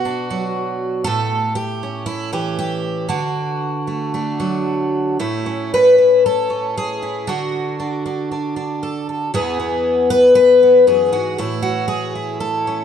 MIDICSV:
0, 0, Header, 1, 2, 480
1, 0, Start_track
1, 0, Tempo, 507614
1, 1005, Time_signature, 4, 2, 24, 8
1, 2923, Tempo, 524017
1, 6763, Tempo, 512821
1, 11968, End_track
2, 0, Start_track
2, 0, Title_t, "Twelve-string acoustic guitar"
2, 0, Program_c, 0, 25
2, 0, Note_on_c, 0, 47, 58
2, 0, Note_on_c, 0, 66, 74
2, 48, Note_on_c, 0, 62, 42
2, 288, Note_on_c, 0, 54, 54
2, 978, Note_off_c, 0, 54, 0
2, 979, Note_off_c, 0, 62, 0
2, 983, Note_off_c, 0, 66, 0
2, 987, Note_on_c, 0, 69, 92
2, 1008, Note_off_c, 0, 47, 0
2, 1009, Note_on_c, 0, 45, 62
2, 1465, Note_off_c, 0, 69, 0
2, 1469, Note_on_c, 0, 67, 81
2, 1729, Note_on_c, 0, 61, 39
2, 1944, Note_off_c, 0, 67, 0
2, 1948, Note_on_c, 0, 64, 77
2, 2195, Note_off_c, 0, 64, 0
2, 2199, Note_on_c, 0, 52, 57
2, 2205, Note_on_c, 0, 67, 64
2, 2434, Note_off_c, 0, 67, 0
2, 2445, Note_on_c, 0, 67, 76
2, 2897, Note_off_c, 0, 45, 0
2, 2899, Note_off_c, 0, 61, 0
2, 2918, Note_on_c, 0, 50, 64
2, 2923, Note_off_c, 0, 52, 0
2, 2923, Note_off_c, 0, 67, 0
2, 2926, Note_on_c, 0, 66, 70
2, 3639, Note_on_c, 0, 57, 38
2, 3872, Note_off_c, 0, 57, 0
2, 3883, Note_on_c, 0, 57, 40
2, 3889, Note_on_c, 0, 62, 42
2, 4119, Note_on_c, 0, 54, 53
2, 4824, Note_off_c, 0, 50, 0
2, 4825, Note_off_c, 0, 54, 0
2, 4833, Note_off_c, 0, 62, 0
2, 4850, Note_on_c, 0, 45, 67
2, 4851, Note_off_c, 0, 66, 0
2, 4855, Note_on_c, 0, 64, 66
2, 5089, Note_off_c, 0, 57, 0
2, 5092, Note_on_c, 0, 61, 42
2, 5332, Note_off_c, 0, 64, 0
2, 5347, Note_on_c, 0, 71, 88
2, 5570, Note_on_c, 0, 64, 41
2, 5818, Note_off_c, 0, 71, 0
2, 5824, Note_on_c, 0, 69, 81
2, 6033, Note_off_c, 0, 61, 0
2, 6044, Note_on_c, 0, 61, 40
2, 6294, Note_off_c, 0, 69, 0
2, 6298, Note_on_c, 0, 68, 81
2, 6515, Note_off_c, 0, 64, 0
2, 6526, Note_on_c, 0, 64, 40
2, 6731, Note_off_c, 0, 61, 0
2, 6732, Note_off_c, 0, 45, 0
2, 6735, Note_off_c, 0, 64, 0
2, 6753, Note_on_c, 0, 50, 67
2, 6768, Note_off_c, 0, 68, 0
2, 6768, Note_on_c, 0, 66, 72
2, 7242, Note_on_c, 0, 62, 42
2, 7475, Note_off_c, 0, 62, 0
2, 7486, Note_on_c, 0, 62, 40
2, 7717, Note_off_c, 0, 62, 0
2, 7728, Note_on_c, 0, 62, 44
2, 7949, Note_off_c, 0, 62, 0
2, 7960, Note_on_c, 0, 62, 43
2, 8208, Note_on_c, 0, 69, 47
2, 8443, Note_off_c, 0, 69, 0
2, 8454, Note_on_c, 0, 69, 39
2, 8649, Note_off_c, 0, 50, 0
2, 8653, Note_off_c, 0, 62, 0
2, 8659, Note_off_c, 0, 69, 0
2, 8685, Note_off_c, 0, 66, 0
2, 8686, Note_on_c, 0, 40, 69
2, 8693, Note_on_c, 0, 52, 46
2, 8693, Note_on_c, 0, 68, 82
2, 8701, Note_on_c, 0, 59, 47
2, 8924, Note_off_c, 0, 59, 0
2, 8928, Note_on_c, 0, 59, 46
2, 9398, Note_off_c, 0, 68, 0
2, 9403, Note_on_c, 0, 71, 98
2, 9625, Note_off_c, 0, 71, 0
2, 9636, Note_on_c, 0, 71, 103
2, 9890, Note_off_c, 0, 59, 0
2, 9893, Note_on_c, 0, 59, 47
2, 10114, Note_off_c, 0, 71, 0
2, 10116, Note_off_c, 0, 40, 0
2, 10121, Note_on_c, 0, 42, 58
2, 10125, Note_on_c, 0, 68, 81
2, 10354, Note_off_c, 0, 42, 0
2, 10357, Note_off_c, 0, 59, 0
2, 10358, Note_on_c, 0, 44, 55
2, 10361, Note_on_c, 0, 66, 68
2, 10596, Note_off_c, 0, 66, 0
2, 10597, Note_off_c, 0, 44, 0
2, 10600, Note_off_c, 0, 68, 0
2, 10601, Note_on_c, 0, 45, 68
2, 10609, Note_on_c, 0, 64, 77
2, 10827, Note_on_c, 0, 66, 83
2, 11060, Note_off_c, 0, 64, 0
2, 11064, Note_on_c, 0, 68, 80
2, 11312, Note_off_c, 0, 66, 0
2, 11322, Note_on_c, 0, 64, 43
2, 11551, Note_off_c, 0, 68, 0
2, 11556, Note_on_c, 0, 69, 72
2, 11807, Note_on_c, 0, 61, 41
2, 11968, Note_off_c, 0, 45, 0
2, 11968, Note_off_c, 0, 52, 0
2, 11968, Note_off_c, 0, 61, 0
2, 11968, Note_off_c, 0, 64, 0
2, 11968, Note_off_c, 0, 69, 0
2, 11968, End_track
0, 0, End_of_file